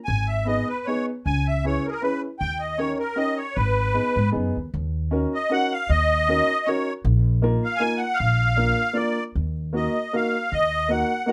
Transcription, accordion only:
0.05 G#5
0.28 E5
0.47 D#5
0.68 B4
0.86 C#5
1.26 G#5
1.47 E5
1.66 C#5
1.87 G#4 A#4
1.93 A#4
2.02 B4
2.39 G5
2.60 D#5
2.78 C#5
2.99 A#4
3.17 D#5
3.37 C#5
3.55 B4
5.34 D#5
5.52 F#5
5.72 F5
5.90 D#5
6.65 C#5
7.64 F5
7.77 G#5
7.97 F#5
8.14 F5
8.95 D5
9.76 D#5
10.15 F5
10.53 D#5
10.91 F#5

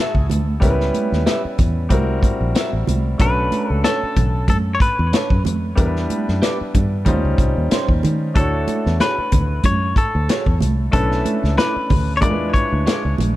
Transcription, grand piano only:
Already playing: F#3 A3 C#4 E4 A4
0.60 G3 B3 C#4 E4 A#4
0.70 B4
1.89 G3 C4 E4 F#4 A#4
3.18 A3 C#4 D4 F#4 B4
5.75 G3 B3 D4 E4 A#4
5.86 B4
7.05 G3 C#4 D#4 F4 C5
8.34 A3 D4 E4 F#4 C#5
10.92 A3 C#4 D4 E4 B4
12.21 G#3 D4 E4 F4 A#4
12.30 B4

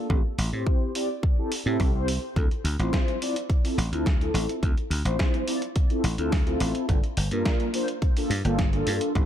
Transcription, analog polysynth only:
0.09 C4 E4 G4 A4
0.52 C4 E4 G4 C5
0.95 C4 E4 G4 D5
1.38 C4 E4 G4 A4
1.65 C4 E4 G4 A4
1.94 C4 E4 G4 C5
2.36 C4 E4 F4 A4
2.79 C4 E4 F4 C5
3.21 C4 E4 F4 D5
3.63 C4 E4 F4 A4
3.92 C4 E4 F4 A4
4.21 C4 E4 F4 A4
4.62 C4 E4 F4 A4
5.05 C4 E4 F4 C5
5.47 C4 E4 F4 D5
5.90 C4 E4 F4 A4
6.18 C4 E4 F4 A4
6.46 C4 E4 F4 A4
6.89 A#3 D4 F4 A4
7.31 A#3 D4 F4 A#4
7.73 A#3 D4 F4 C5
8.16 A#3 D4 F4 A4
8.45 A#3 D4 F4 A4
8.73 A#3 D4 F4 A4
9.16 C4 E4 G4 A4

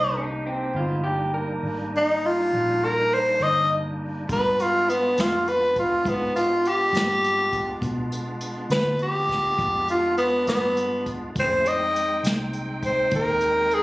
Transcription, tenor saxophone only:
Already playing: D#5
1.96 D#4
2.26 F4
2.85 A#4
3.14 C5
3.43 D#5
4.32 B4
4.61 F4
4.90 B3
5.21 F4
5.49 B4
5.79 F4
6.09 B3
6.36 F4
6.68 G4
8.72 B4
9.02 G4
9.90 F4
10.17 B3
10.48 B3
11.39 C5
11.68 D#5
12.86 C5
13.15 A#4
13.74 G#4

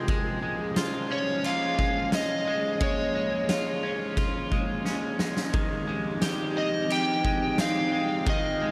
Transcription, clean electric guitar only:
Already playing: C4
0.09 G#3
0.42 G#3
0.77 F4
1.10 C#4
1.44 F4
1.79 G#3
2.13 C#4
2.47 G#3
2.81 G#3
3.15 G#3
3.50 F4
3.83 C#4
4.17 F4
4.51 G#3
4.85 C#4
5.20 G#3
5.54 D#3
5.87 G#3
6.22 G4
6.56 C4
6.90 G4
7.25 G#3
7.59 C4
7.93 G#3
8.27 D#3
8.61 G#3

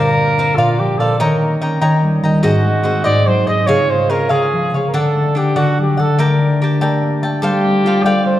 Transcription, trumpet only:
Already playing: A#4
0.56 F4
0.79 G4
0.99 A4
1.19 A#4
2.43 F#4
3.04 D5
3.27 C5
3.47 D#5
3.66 C#5
3.90 C5
4.11 A#4
4.30 G#4
4.88 A#4
4.95 A4
5.38 G4
5.58 F#4
5.81 G4
6.00 A4
6.20 A#4
7.41 G4
8.03 D5
8.26 C5

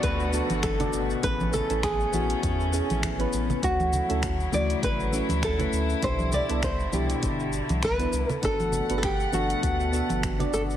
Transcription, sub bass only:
0.03 D2
0.50 G1
0.93 G1
1.23 A1
1.70 A1
2.13 A1
2.43 E2
2.90 A1
3.33 A1
3.63 D2
4.10 D2
4.53 D2
4.83 A1
5.30 D2
5.73 D2
6.03 C2
6.50 C2
6.93 C2
7.23 G1
7.69 C2
8.13 C2
8.43 G1
8.90 G1
9.33 G1
9.63 D2
10.10 G1
10.53 G1

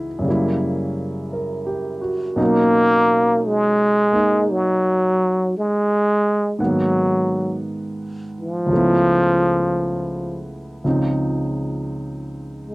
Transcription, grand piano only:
Already playing: C#2 C#3 E3 B3 D#4 E4 G#4
0.19 F#2 C#3
0.25 G3 A#3
0.30 E4
1.33 A#4
1.66 G4
2.01 F#4
2.36 B2 F#3 A#3 C#4 D#4
4.12 A#3 D#4
6.59 G#2 D#3 A#3 B3 F#5
8.66 C#2 C#3
8.71 F3 A3 B3
8.77 E4
10.84 C#2 C#3 F3 C4 D#4

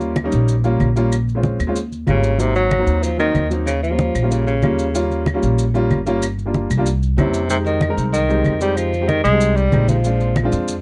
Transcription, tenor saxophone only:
2.09 C#3
2.40 C3
2.55 F#3
3.03 F3
3.19 D#3
3.67 C#3
3.83 F3
4.31 C#3
4.47 C#3
7.18 C3
7.51 C3
7.65 D#3
8.13 D#3
8.62 G3
8.77 F3
9.08 D#3
9.24 G#3
9.56 G3
9.89 F3

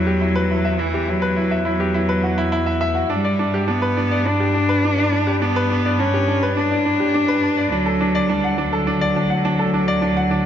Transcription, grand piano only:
Already playing: E4 G4 B4 E5
0.07 G4
0.21 E4
0.35 B4
0.51 E4
0.65 E5
0.79 E4
0.94 G4
1.08 E4
1.22 B4
1.36 E4
1.51 E5
1.65 E4
1.80 G4
1.94 E4
2.09 B4
2.23 F#4
2.38 E4
2.52 E4
2.66 E5
2.81 E5
2.95 F#4
3.10 D4
3.25 D5
3.39 D4
3.54 G4
3.68 D4
3.82 B4
3.97 D4
4.11 D5
4.26 D4
4.40 G4
4.54 D4
4.69 B4
4.84 D4
4.98 D5
5.12 D4
5.27 G4
5.42 D4
5.56 B4
5.70 D4
5.85 D5
5.99 D4
6.14 G4
6.28 D4
6.43 B4
6.57 D4
6.71 D5
6.85 D4
7.00 G4
7.14 D4
7.28 B4
7.43 D4
7.58 D5
7.72 D4
7.86 A4
8.01 D4
8.15 D5
8.30 D4
8.44 F#5
8.58 D4
8.73 A4
8.87 D4
9.01 D5
9.16 D4
9.30 F#5
9.45 D4
9.59 A4
9.74 D4
9.88 D5
10.02 D4
10.17 F#5
10.31 D4

